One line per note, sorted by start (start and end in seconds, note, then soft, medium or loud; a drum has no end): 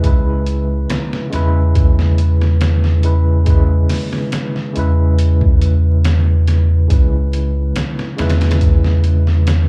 0.00 0.86 C#2 loud
0.00 1.30 C#3 medium
0.00 0.03 G#3 medium
0.00 1.27 G#3 medium
0.00 0.05 E4 medium
0.00 0.06 B4 loud
0.00 kick loud
0.00 closed hi-hat medium
0.05 1.28 E4 medium
0.05 1.29 B4 medium
0.46 closed hi-hat medium
0.90 snare loud
0.90 closed hi-hat medium
1.13 snare medium
1.30 3.86 E2 loud
1.30 2.98 C#3 medium
1.30 2.99 G#3 medium
1.30 3.00 E4 medium
1.30 snare soft
1.30 closed hi-hat medium
1.36 3.01 B4 loud
1.75 kick loud
1.75 closed hi-hat medium
1.99 snare soft
2.18 closed hi-hat medium
2.42 snare soft
2.61 snare loud
2.61 closed hi-hat medium
2.84 snare soft
3.03 3.42 C#3 medium
3.03 3.42 G#3 medium
3.03 3.43 E4 medium
3.03 3.43 B4 medium
3.03 closed hi-hat medium
3.45 4.70 C#3 medium
3.45 4.71 G#3 medium
3.45 4.72 E4 medium
3.45 kick loud
3.45 closed hi-hat medium
3.50 4.72 B4 medium
3.89 snare medium
3.89 open hi-hat medium
4.13 snare medium
4.32 snare loud
4.32 closed hi-hat medium
4.56 snare soft
4.73 6.87 E2 loud
4.73 6.84 C#3 medium
4.73 6.85 G#3 medium
4.73 6.86 E4 medium
4.73 closed hi-hat medium
4.79 6.87 B4 loud
5.19 closed hi-hat medium
5.41 kick medium
5.62 closed hi-hat medium
6.05 snare loud
6.05 closed hi-hat medium
6.47 snare soft
6.47 closed hi-hat medium
6.88 7.72 C#2 medium
6.88 8.13 C#3 medium
6.88 8.14 G#3 medium
6.88 8.15 E4 medium
6.88 kick loud
6.88 closed hi-hat medium
6.93 8.16 B4 medium
7.33 closed hi-hat medium
7.76 snare loud
7.76 closed hi-hat medium
7.99 snare medium
8.16 9.69 E2 medium
8.16 9.69 C#3 loud
8.16 9.69 G#3 medium
8.16 9.69 E4 medium
8.16 snare medium
8.16 closed hi-hat medium
8.22 9.69 B4 loud
8.30 snare medium
8.30 closed hi-hat medium
8.41 snare medium
8.41 closed hi-hat medium
8.51 snare medium
8.51 closed hi-hat medium
8.61 kick loud
8.61 closed hi-hat medium
8.84 snare soft
9.04 closed hi-hat medium
9.27 snare soft
9.47 snare loud
9.47 closed hi-hat medium